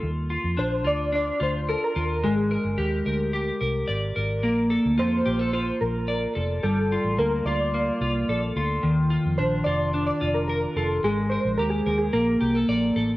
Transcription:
<<
  \new Staff \with { instrumentName = "Synth keys" } { \time 4/4 \key ees \lydian \tempo 4 = 109 r4 c''8 d''8 d''8 c''8 a'16 bes'8. | aes'4 r2. | r4 c''4 c''8 bes'4 r8 | a'4 bes'8 d''2 r8 |
r4 c''8 d''8. d''8 bes'16 bes'8 a'8 | aes'8 c''8 bes'16 aes'8 aes'16 bes'4 r4 | }
  \new Staff \with { instrumentName = "Clean electric guitar" } { \time 4/4 \key ees \lydian r8 f'8 d'8 f'8 d'8 f'8 bes'8 f'8 | aes8 bes'8 g'8 bes'8 g'8 bes'8 d''8 bes'8 | bes8 a'8 f'8 g'16 a'16 f'4 d''8 a'8 | g8 f'8 bes8 f'8 bes8 f'8 a'8 f'8 |
ees8 f'8 d'8 f'8 d'8 f'8 bes'8 f'8 | aes8 bes'8 g'8 bes'8 bes8 g'16 a'16 d''8 a'8 | }
  \new Staff \with { instrumentName = "Fingered electric bass" } { \clef bass \time 4/4 \key ees \lydian ees,8. f,16 bes,,8 d,4 d,8. r16 ees,8 | aes,,8. g,,16 ees,8 d,4 c,8 aes,,8 aes,,8 | bes,,8. d,16 f,8 bes,,4 bes,,4 f,,8 | g,,8. a,,16 d,8 d,4 c,8 bes,,8 d,8 |
ees,8. f,16 bes,,8 f,,4 f,,4 f,,8 | aes,,8. bes,,16 ees,8 ees,8 bes,,8 c,8 bes,,8 a,,8 | }
>>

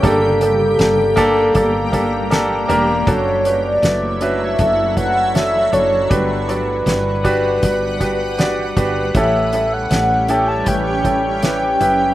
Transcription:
<<
  \new Staff \with { instrumentName = "Soft synth lead" } { \time 4/4 \key g \lydian \tempo 4 = 79 a'2.~ a'8 r8 | cis''8. d''8. e''4 fis''8 e''8 cis''8 | b'2.~ b'8 r8 | e''8. fis''8. g''16 a''16 g''4 g''4 | }
  \new Staff \with { instrumentName = "Grand piano" } { \time 4/4 \key g \lydian <bes d' g' a'>8 <bes d' g' a'>8 <bes d' g' a'>8 <bes d' g' a'>8 <bes d' g' a'>8 <bes d' g' a'>8 <bes d' g' a'>8 <bes d' g' bes'>8 | <cis' d' fis' a'>8 <cis' d' fis' b'>8 <a d' fis' b'>8 <cis' d' fis' b'>8 <cis' d' fis' a'>8 <cis' d' fis' b'>8 <cis' d' fis' a'>8 <cis' d' fis' a'>8 | <d' fis' g' b'>8 <d' fis' g' d''>8 <d' fis' g' b'>8 <d' fis' g' b'>8 <d' fis' g' b'>8 <d' fis' g' b'>8 <d' fis' g' d''>8 <d' fis' g' b'>8 | <cis' e' g' a'>8 <cis' e' g' a'>8 <cis' e' g' a'>8 <cis' e' g' a'>8 <cis' e' g' b'>8 <cis' e' g' a'>8 <cis' e' g' b'>8 <cis' e' g' b'>8 | }
  \new Staff \with { instrumentName = "Grand piano" } { \clef bass \time 4/4 \key g \lydian <g, d>4. r2 r8 | fis4. r2 r8 | <g, d>4. r2 r8 | <a, e>4. r2 r8 | }
  \new Staff \with { instrumentName = "Ambient pad" } { \time 4/4 \key g \lydian <g bes g'>1 | <fis a e'>1 | <g b' fis''>1 | <g cis' g'>1 | }
  \new Staff \with { instrumentName = "Fretless electric bass" } { \clef bass \time 4/4 \key g \lydian g,,4 g,,4 g,,4. e,,8 | fis,,4 fis,,4 fis,,4. fis,,8 | g,,4 g,,4 g,,4. g,,8 | a,,4 a,,4 a,,4. fis,,8 | }
  \new DrumStaff \with { instrumentName = "Drums" } \drummode { \time 4/4 <hh bd>8 hh8 <hh sn>8 <hh bd>8 <hh bd>8 <hh bd>8 <hh sn>8 hh8 | <hh bd>8 hh8 <hh sn>8 hh8 <hh bd>8 <hh bd>8 <hh sn>8 hh8 | <hh bd>8 hh8 <hh sn>8 <hh bd>8 <hh bd>8 <hh bd>8 <hh sn>8 <hh bd>8 | <hh bd>8 hh8 <hh sn>8 hh8 <hh bd>8 <hh bd>8 <hh sn>8 hh8 | }
>>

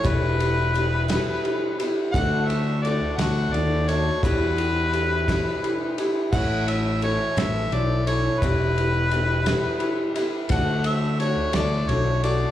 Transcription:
<<
  \new Staff \with { instrumentName = "Harmonica" } { \time 6/8 \key e \dorian \tempo 4. = 57 b'2~ b'8 r8 | fis''8 e''8 d''8 fis''8 d''8 cis''8 | b'2~ b'8 r8 | fis''8 e''8 cis''8 e''8 d''8 cis''8 |
b'2~ b'8 r8 | fis''8 e''8 cis''8 d''8 cis''8 d''8 | }
  \new Staff \with { instrumentName = "Upright piano" } { \time 6/8 \key e \dorian <e' g' b'>8 <e' g' b'>8 <e' g' b'>8 r8 <e' g' b'>8 <e' g' b'>8 | <d' fis' a'>8 <d' fis' a'>8 <d' fis' a'>8 r8 <d' fis' a'>8 <d' fis' a'>8 | <e' g' b'>8 <e' g' b'>8 <e' g' b'>8 r8 <e' g' b'>8 <e' g' b'>8 | <e' a' cis''>8 <e' a' cis''>8 <e' a' b'>8 r8 <e' a' cis''>8 <e' a' cis''>8 |
<e' g' b'>8 <e' g' b'>8 <e' g' b'>8 r8 <e' g' b' b''>8 <e' g' b' e''>8 | <d' fis' a'>8 <d' fis' a'>8 <d' fis' a'>8 r8 <d' fis' a'>8 <d' fis' a'>8 | }
  \new Staff \with { instrumentName = "Steel-string acoustic guitar" } { \time 6/8 \key e \dorian <e, b, e g b e'>4 <e g b e'>8 <e, b, e g b e'>4 <e g b e'>8 | <d a d' fis'>4 <d a d' fis'>8 <d a d' fis'>4 <a d' fis'>8 | <e, b, e g b e'>4 <e g b e'>8 <e, b, e g b e'>4 <e g b e'>8 | <a, e a cis' e'>4 <e a cis' e'>8 <a, e a e'>4 <a cis' e'>8 |
<e, b, e g b e'>4 <e g b e'>8 <e, b, e g b e'>4 <e g b e'>8 | <d a d' fis'>4 <d a d' fis'>8 <d a d' fis'>4 <a d' fis'>8 | }
  \new Staff \with { instrumentName = "Fingered electric bass" } { \clef bass \time 6/8 \key e \dorian e,,2 r4 | d,4. d,8 dis,4 | e,2 r4 | a,,4. a,,8 b,,4 |
e,,2 r4 | d,4. d,8 b,,4 | }
  \new DrumStaff \with { instrumentName = "Drums" } \drummode { \time 6/8 <bd cymr>8 cymr8 cymr8 <cymr sn>8 cymr8 cymr8 | <bd cymr>8 cymr8 cymr8 <cymr sn>8 cymr8 cymr8 | <bd cymr>8 cymr8 cymr8 <bd cymr sn>8 cymr8 cymr8 | <cymc bd>8 cymr8 cymr8 <cymr sn>8 cymr8 cymr8 |
<bd cymr>8 cymr8 cymr8 <cymr sn>8 cymr8 cymr8 | <bd cymr>8 cymr8 cymr8 <cymr sn>8 cymr8 cymr8 | }
>>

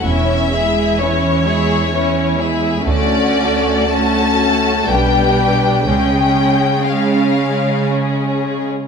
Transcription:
<<
  \new Staff \with { instrumentName = "Violin section" } { \time 3/4 \key cis \phrygian \tempo 4 = 61 e''4 cis''4. r8 | d''4 a''4 g''4 | g''4 eis''4 r4 | }
  \new Staff \with { instrumentName = "Violin section" } { \time 3/4 \key cis \phrygian <e' cis''>8 <gis' e''>8 <e' cis''>8 <gis' e''>8 <e' cis''>8 <gis' e''>8 | <fis' a'>4 <fis' a'>4 <g' b'>4 | <cis' gis'>4 <cis' gis'>2 | }
  \new Staff \with { instrumentName = "Viola section" } { \time 3/4 \key cis \phrygian <e cis'>8 <gis e'>8 <e cis'>8 <gis e'>8 <e cis'>8 <gis e'>8 | <a cis'>4 <a cis'>4 <g d'>4 | <gis cis'>4 <gis cis'>2 | }
  \new Staff \with { instrumentName = "Cello section" } { \clef bass \time 3/4 \key cis \phrygian e,2. | d,2 b,4 | cis2. | }
  \new Staff \with { instrumentName = "Double bass section" } { \clef bass \time 3/4 \key cis \phrygian e,,4 r2 | d,4 r4 b,,4 | cis,4 r2 | }
>>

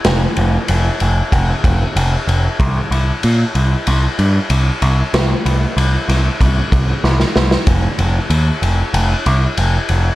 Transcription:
<<
  \new Staff \with { instrumentName = "Picked electric bass" } { \clef bass \time 4/4 \key c \dorian \tempo 4 = 94 f,,8 f,,8 f,,8 f,,8 f,,8 f,,8 f,,8 f,,8 | c,8 c,8 bes,8 c,8 c,8 g,8 c,8 c,8 | c,8 c,8 c,8 c,8 c,8 c,8 c,8 c,8 | f,,8 f,,8 ees,8 f,,8 f,,8 c,8 f,,8 f,,8 | }
  \new DrumStaff \with { instrumentName = "Drums" } \drummode { \time 4/4 <cymr sn>8 cymr8 cymr8 cymr8 <bd cymr>8 <bd cymr>8 cymr8 cymr8 | <bd cymr>8 cymr8 cymr8 cymr8 cymr8 cymr8 cymr8 cymr8 | <cymr sn>8 cymr8 cymr8 <cymr sn>8 <bd cymr>8 <bd cymr>8 sn16 sn16 sn16 sn16 | <bd cymr>8 cymr8 cymr8 cymr8 cymr8 cymr8 cymr8 cymr8 | }
>>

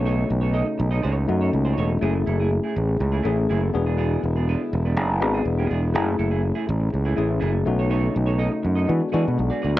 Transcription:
<<
  \new Staff \with { instrumentName = "Clean electric guitar" } { \time 4/4 \key fis \minor \tempo 4 = 122 <dis' a' cis''>8 r16 <dis' a' cis''>16 <dis' a' dis''>8 r16 <dis' a' dis''>16 <dis' a' cis''>8 r16 <dis' a' cis''>16 r16 <dis' a' cis''>16 <dis' a' cis''>16 r16 | <a e' gis'>8 <a e' a'>16 <a e' gis'>16 r16 <a e' gis'>8 r8 <a e' gis'>16 <a e' gis'>16 r16 <a e' gis'>8 r16 <b d' gis'>16 | <b d' gis'>8 r16 <b d' gis'>16 <b d' b'>8 r16 <b d' b'>16 <b d' gis'>8 r16 <b d' gis'>16 r16 <b d' gis'>16 <b d' gis'>16 r16 | <a e' gis'>8 <a e' a'>16 <a e' gis'>16 r16 <a e' gis'>8 r8 <a e' gis'>16 <a e' gis'>16 r16 <a e' gis'>8 r16 <dis' a' cis''>16 |
<dis' a' cis''>8 r16 <dis' a' cis''>16 <dis' a' dis''>8 r16 <dis' a' dis''>16 r8 <fis' gis' d''>8 r16 <fis' gis' d''>16 <fis' gis' d''>16 r16 | }
  \new Staff \with { instrumentName = "Tine electric piano" } { \time 4/4 \key fis \minor <a cis' dis' fis'>4 r4. <a cis' dis' fis'>4 r8 | <a cis' e' gis'>4. r4 <a cis' e' gis'>4 <b d' fis' gis'>8~ | <b d' fis' gis'>4 r4. <b d' fis' gis'>4 r8 | <a cis' e' gis'>4. r4 <a cis' e' gis'>4 <a cis' dis' fis'>8~ |
<a cis' dis' fis'>4 r4 <gis b d' fis'>8 <gis b d' fis'>4 r8 | }
  \new Staff \with { instrumentName = "French horn section" } { \clef bass \time 4/4 \key fis \minor << { dis'1 | e'1~ | e'1~ | e'2.~ e'8 dis'8~ |
dis'2 fis'2 | } \\ { <cis a>1 | <a, gis'>2.~ <a, gis'>8 <d gis>8~ | <d gis>1 | <a, gis'>2.~ <a, gis'>8 <cis a>8~ |
<cis a>2 <d gis>2 | } >> }
  \new Staff \with { instrumentName = "Fingered electric bass" } { \clef bass \time 4/4 \key fis \minor b,,8 b,,8. r16 b,,8 cis,8 fis,8 cis,8 e,,8 | fis,,8 fis,,8. r16 a,,8 cis,8 a,,8 fis,,8 e,,8~ | e,,8 e,,8. r16 e,,8 fis,,8 gis,,8 e,,8 e,,8 | fis,,8 fis,,8. r16 a,,8 cis,8 a,,8 fis,,8 b,,8~ |
b,,8 b,,8. r16 fis,8 e16 r16 e16 b,16 b,,16 r16 d,16 e,16 | }
>>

